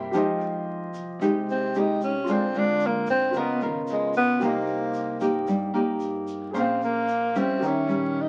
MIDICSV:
0, 0, Header, 1, 7, 480
1, 0, Start_track
1, 0, Key_signature, -4, "minor"
1, 0, Tempo, 534236
1, 124, Time_signature, 4, 2, 24, 8
1, 7446, End_track
2, 0, Start_track
2, 0, Title_t, "String section"
2, 0, Program_c, 0, 48
2, 0, Note_on_c, 0, 70, 69
2, 0, Note_on_c, 0, 76, 61
2, 0, Note_on_c, 0, 79, 68
2, 0, Note_on_c, 0, 84, 71
2, 112, Note_off_c, 0, 76, 0
2, 115, Note_off_c, 0, 70, 0
2, 115, Note_off_c, 0, 79, 0
2, 116, Note_off_c, 0, 84, 0
2, 7446, End_track
3, 0, Start_track
3, 0, Title_t, "Grand piano"
3, 0, Program_c, 1, 0
3, 0, Control_c, 1, 64, 127
3, 0, Note_on_c, 1, 55, 42
3, 0, Note_on_c, 1, 58, 38
3, 0, Note_on_c, 1, 64, 48
3, 0, Note_on_c, 1, 76, 70
3, 102, Note_on_c, 1, 67, 51
3, 134, Control_c, 1, 64, 0
3, 137, Note_off_c, 1, 55, 0
3, 137, Note_off_c, 1, 76, 0
3, 139, Note_off_c, 1, 58, 0
3, 139, Note_on_c, 1, 72, 52
3, 143, Note_off_c, 1, 64, 0
3, 154, Note_on_c, 1, 75, 62
3, 316, Control_c, 1, 64, 127
3, 1997, Note_off_c, 1, 67, 0
3, 2013, Note_on_c, 1, 65, 45
3, 2016, Note_off_c, 1, 72, 0
3, 2023, Note_off_c, 1, 75, 0
3, 2035, Note_on_c, 1, 68, 43
3, 2053, Note_on_c, 1, 72, 45
3, 2054, Control_c, 1, 64, 0
3, 2071, Note_on_c, 1, 74, 52
3, 2220, Control_c, 1, 64, 127
3, 2957, Note_off_c, 1, 65, 0
3, 2971, Note_on_c, 1, 65, 46
3, 2980, Note_off_c, 1, 68, 0
3, 2989, Note_on_c, 1, 70, 41
3, 2990, Note_off_c, 1, 72, 0
3, 2999, Note_off_c, 1, 74, 0
3, 3015, Control_c, 1, 64, 0
3, 3027, Note_on_c, 1, 75, 52
3, 3177, Control_c, 1, 64, 127
3, 3929, Note_off_c, 1, 65, 0
3, 3938, Note_off_c, 1, 70, 0
3, 3946, Note_on_c, 1, 67, 49
3, 3957, Note_off_c, 1, 75, 0
3, 3961, Note_on_c, 1, 70, 42
3, 3978, Control_c, 1, 64, 0
3, 3979, Note_on_c, 1, 72, 45
3, 3999, Note_on_c, 1, 75, 55
3, 4142, Control_c, 1, 64, 127
3, 5840, Note_off_c, 1, 67, 0
3, 5847, Note_on_c, 1, 68, 45
3, 5848, Note_off_c, 1, 70, 0
3, 5856, Note_off_c, 1, 72, 0
3, 5867, Note_off_c, 1, 75, 0
3, 5869, Note_on_c, 1, 72, 44
3, 5896, Control_c, 1, 64, 0
3, 5902, Note_on_c, 1, 77, 56
3, 6037, Control_c, 1, 64, 127
3, 6807, Note_off_c, 1, 68, 0
3, 6814, Note_on_c, 1, 67, 47
3, 6818, Note_off_c, 1, 72, 0
3, 6835, Note_off_c, 1, 77, 0
3, 6836, Note_on_c, 1, 70, 42
3, 6855, Note_on_c, 1, 73, 43
3, 6856, Control_c, 1, 64, 0
3, 6870, Note_on_c, 1, 76, 48
3, 7014, Control_c, 1, 64, 127
3, 7446, Note_off_c, 1, 67, 0
3, 7446, Note_off_c, 1, 70, 0
3, 7446, Note_off_c, 1, 73, 0
3, 7446, Note_off_c, 1, 76, 0
3, 7446, End_track
4, 0, Start_track
4, 0, Title_t, "Nylon-string guitar"
4, 0, Program_c, 2, 24
4, 0, Note_on_c, 2, 48, 59
4, 0, Note_on_c, 2, 64, 53
4, 0, Note_on_c, 2, 67, 64
4, 91, Note_off_c, 2, 67, 0
4, 92, Note_off_c, 2, 64, 0
4, 104, Note_off_c, 2, 48, 0
4, 123, Note_on_c, 2, 53, 57
4, 126, Note_on_c, 2, 56, 50
4, 129, Note_on_c, 2, 63, 53
4, 133, Note_on_c, 2, 67, 63
4, 770, Note_off_c, 2, 56, 0
4, 772, Note_off_c, 2, 63, 0
4, 773, Note_off_c, 2, 67, 0
4, 1060, Note_off_c, 2, 53, 0
4, 1088, Note_on_c, 2, 48, 60
4, 1092, Note_on_c, 2, 63, 59
4, 1093, Note_on_c, 2, 56, 51
4, 1098, Note_on_c, 2, 67, 64
4, 1530, Note_off_c, 2, 56, 0
4, 1531, Note_off_c, 2, 63, 0
4, 1532, Note_off_c, 2, 67, 0
4, 1579, Note_on_c, 2, 56, 57
4, 1582, Note_on_c, 2, 63, 48
4, 1585, Note_on_c, 2, 67, 58
4, 1895, Note_off_c, 2, 56, 0
4, 1895, Note_off_c, 2, 63, 0
4, 1897, Note_off_c, 2, 67, 0
4, 2023, Note_off_c, 2, 48, 0
4, 2052, Note_on_c, 2, 50, 54
4, 2052, Note_on_c, 2, 56, 54
4, 2057, Note_on_c, 2, 60, 55
4, 2062, Note_on_c, 2, 65, 54
4, 2189, Note_off_c, 2, 56, 0
4, 2192, Note_off_c, 2, 60, 0
4, 2194, Note_off_c, 2, 65, 0
4, 2298, Note_on_c, 2, 56, 66
4, 2302, Note_on_c, 2, 60, 58
4, 2305, Note_on_c, 2, 65, 64
4, 2984, Note_off_c, 2, 50, 0
4, 2992, Note_off_c, 2, 56, 0
4, 2994, Note_off_c, 2, 60, 0
4, 2996, Note_off_c, 2, 65, 0
4, 3018, Note_on_c, 2, 49, 53
4, 3019, Note_on_c, 2, 59, 54
4, 3022, Note_on_c, 2, 65, 54
4, 3025, Note_on_c, 2, 70, 67
4, 3152, Note_off_c, 2, 59, 0
4, 3155, Note_off_c, 2, 65, 0
4, 3156, Note_off_c, 2, 70, 0
4, 3253, Note_on_c, 2, 59, 59
4, 3256, Note_on_c, 2, 65, 60
4, 3261, Note_on_c, 2, 70, 65
4, 3931, Note_off_c, 2, 59, 0
4, 3933, Note_off_c, 2, 65, 0
4, 3934, Note_off_c, 2, 70, 0
4, 3948, Note_off_c, 2, 49, 0
4, 3968, Note_on_c, 2, 48, 55
4, 3971, Note_on_c, 2, 58, 56
4, 3975, Note_on_c, 2, 63, 56
4, 3975, Note_on_c, 2, 67, 57
4, 4649, Note_off_c, 2, 58, 0
4, 4650, Note_off_c, 2, 63, 0
4, 4652, Note_off_c, 2, 67, 0
4, 4678, Note_on_c, 2, 58, 57
4, 4684, Note_on_c, 2, 63, 56
4, 4688, Note_on_c, 2, 67, 63
4, 4903, Note_off_c, 2, 48, 0
4, 4926, Note_on_c, 2, 55, 59
4, 5123, Note_off_c, 2, 58, 0
4, 5127, Note_off_c, 2, 63, 0
4, 5127, Note_off_c, 2, 67, 0
4, 5154, Note_on_c, 2, 58, 55
4, 5158, Note_on_c, 2, 63, 59
4, 5167, Note_on_c, 2, 67, 67
4, 5841, Note_off_c, 2, 58, 0
4, 5843, Note_off_c, 2, 63, 0
4, 5848, Note_off_c, 2, 67, 0
4, 5862, Note_off_c, 2, 55, 0
4, 5877, Note_on_c, 2, 58, 55
4, 5880, Note_on_c, 2, 61, 50
4, 5883, Note_on_c, 2, 72, 59
4, 5887, Note_on_c, 2, 68, 57
4, 6359, Note_off_c, 2, 61, 0
4, 6360, Note_off_c, 2, 68, 0
4, 6361, Note_off_c, 2, 72, 0
4, 6601, Note_off_c, 2, 58, 0
4, 6605, Note_on_c, 2, 55, 56
4, 6611, Note_on_c, 2, 61, 56
4, 6612, Note_on_c, 2, 64, 71
4, 6842, Note_on_c, 2, 51, 57
4, 7048, Note_off_c, 2, 55, 0
4, 7049, Note_off_c, 2, 61, 0
4, 7051, Note_off_c, 2, 64, 0
4, 7085, Note_on_c, 2, 55, 51
4, 7086, Note_on_c, 2, 61, 55
4, 7446, Note_off_c, 2, 51, 0
4, 7446, Note_off_c, 2, 55, 0
4, 7446, Note_off_c, 2, 61, 0
4, 7446, End_track
5, 0, Start_track
5, 0, Title_t, "Tenor saxophone"
5, 0, Program_c, 3, 66
5, 1355, Note_on_c, 3, 60, 83
5, 1607, Note_on_c, 3, 63, 72
5, 1621, Note_off_c, 3, 60, 0
5, 1822, Note_off_c, 3, 63, 0
5, 1828, Note_on_c, 3, 61, 73
5, 2089, Note_on_c, 3, 60, 75
5, 2103, Note_off_c, 3, 61, 0
5, 2322, Note_on_c, 3, 62, 90
5, 2335, Note_off_c, 3, 60, 0
5, 2575, Note_on_c, 3, 58, 75
5, 2588, Note_off_c, 3, 62, 0
5, 2781, Note_off_c, 3, 58, 0
5, 2786, Note_on_c, 3, 60, 95
5, 3041, Note_on_c, 3, 59, 79
5, 3054, Note_off_c, 3, 60, 0
5, 3263, Note_off_c, 3, 59, 0
5, 3271, Note_on_c, 3, 51, 44
5, 3415, Note_off_c, 3, 51, 0
5, 3522, Note_on_c, 3, 56, 64
5, 3737, Note_off_c, 3, 56, 0
5, 3743, Note_on_c, 3, 59, 92
5, 3987, Note_on_c, 3, 58, 74
5, 4001, Note_off_c, 3, 59, 0
5, 4937, Note_off_c, 3, 58, 0
5, 5923, Note_on_c, 3, 60, 65
5, 6129, Note_off_c, 3, 60, 0
5, 6149, Note_on_c, 3, 58, 81
5, 6631, Note_on_c, 3, 60, 79
5, 6644, Note_off_c, 3, 58, 0
5, 6889, Note_on_c, 3, 61, 66
5, 6902, Note_off_c, 3, 60, 0
5, 7383, Note_on_c, 3, 63, 69
5, 7396, Note_off_c, 3, 61, 0
5, 7446, Note_off_c, 3, 63, 0
5, 7446, End_track
6, 0, Start_track
6, 0, Title_t, "Upright bass"
6, 0, Program_c, 4, 32
6, 120, Note_on_c, 4, 41, 92
6, 806, Note_off_c, 4, 41, 0
6, 843, Note_on_c, 4, 36, 72
6, 1067, Note_off_c, 4, 36, 0
6, 1072, Note_on_c, 4, 36, 87
6, 1301, Note_off_c, 4, 36, 0
6, 1318, Note_on_c, 4, 36, 77
6, 2005, Note_off_c, 4, 36, 0
6, 2030, Note_on_c, 4, 38, 96
6, 2721, Note_off_c, 4, 38, 0
6, 2759, Note_on_c, 4, 44, 83
6, 2985, Note_off_c, 4, 44, 0
6, 3000, Note_on_c, 4, 37, 94
6, 3226, Note_off_c, 4, 37, 0
6, 3238, Note_on_c, 4, 32, 74
6, 3926, Note_off_c, 4, 32, 0
6, 3962, Note_on_c, 4, 36, 98
6, 4648, Note_off_c, 4, 36, 0
6, 4681, Note_on_c, 4, 43, 80
6, 4906, Note_off_c, 4, 43, 0
6, 4919, Note_on_c, 4, 43, 98
6, 5145, Note_off_c, 4, 43, 0
6, 5165, Note_on_c, 4, 43, 81
6, 5849, Note_off_c, 4, 43, 0
6, 5877, Note_on_c, 4, 34, 97
6, 6566, Note_off_c, 4, 34, 0
6, 6591, Note_on_c, 4, 41, 74
6, 6821, Note_off_c, 4, 41, 0
6, 6830, Note_on_c, 4, 39, 92
6, 7061, Note_off_c, 4, 39, 0
6, 7071, Note_on_c, 4, 34, 75
6, 7446, Note_off_c, 4, 34, 0
6, 7446, End_track
7, 0, Start_track
7, 0, Title_t, "Drums"
7, 120, Note_on_c, 9, 82, 62
7, 210, Note_off_c, 9, 82, 0
7, 367, Note_on_c, 9, 82, 25
7, 457, Note_off_c, 9, 82, 0
7, 843, Note_on_c, 9, 82, 56
7, 933, Note_off_c, 9, 82, 0
7, 1091, Note_on_c, 9, 82, 59
7, 1180, Note_off_c, 9, 82, 0
7, 1338, Note_on_c, 9, 82, 24
7, 1428, Note_off_c, 9, 82, 0
7, 1565, Note_on_c, 9, 82, 47
7, 1655, Note_off_c, 9, 82, 0
7, 1806, Note_on_c, 9, 82, 52
7, 1896, Note_off_c, 9, 82, 0
7, 2041, Note_on_c, 9, 82, 60
7, 2131, Note_off_c, 9, 82, 0
7, 2283, Note_on_c, 9, 82, 26
7, 2373, Note_off_c, 9, 82, 0
7, 2515, Note_on_c, 9, 82, 53
7, 2605, Note_off_c, 9, 82, 0
7, 2753, Note_on_c, 9, 82, 58
7, 2843, Note_off_c, 9, 82, 0
7, 2996, Note_on_c, 9, 82, 58
7, 3085, Note_off_c, 9, 82, 0
7, 3239, Note_on_c, 9, 82, 27
7, 3329, Note_off_c, 9, 82, 0
7, 3478, Note_on_c, 9, 82, 50
7, 3568, Note_off_c, 9, 82, 0
7, 3715, Note_on_c, 9, 82, 53
7, 3805, Note_off_c, 9, 82, 0
7, 3958, Note_on_c, 9, 82, 55
7, 4047, Note_off_c, 9, 82, 0
7, 4193, Note_on_c, 9, 82, 26
7, 4283, Note_off_c, 9, 82, 0
7, 4433, Note_on_c, 9, 82, 52
7, 4523, Note_off_c, 9, 82, 0
7, 4679, Note_on_c, 9, 82, 57
7, 4769, Note_off_c, 9, 82, 0
7, 4915, Note_on_c, 9, 82, 61
7, 5005, Note_off_c, 9, 82, 0
7, 5161, Note_on_c, 9, 82, 25
7, 5251, Note_off_c, 9, 82, 0
7, 5390, Note_on_c, 9, 82, 50
7, 5480, Note_off_c, 9, 82, 0
7, 5636, Note_on_c, 9, 82, 53
7, 5726, Note_off_c, 9, 82, 0
7, 5882, Note_on_c, 9, 82, 61
7, 5971, Note_off_c, 9, 82, 0
7, 6125, Note_on_c, 9, 82, 25
7, 6215, Note_off_c, 9, 82, 0
7, 6364, Note_on_c, 9, 82, 50
7, 6454, Note_off_c, 9, 82, 0
7, 6606, Note_on_c, 9, 82, 62
7, 6696, Note_off_c, 9, 82, 0
7, 6848, Note_on_c, 9, 82, 56
7, 6938, Note_off_c, 9, 82, 0
7, 7094, Note_on_c, 9, 82, 28
7, 7184, Note_off_c, 9, 82, 0
7, 7446, End_track
0, 0, End_of_file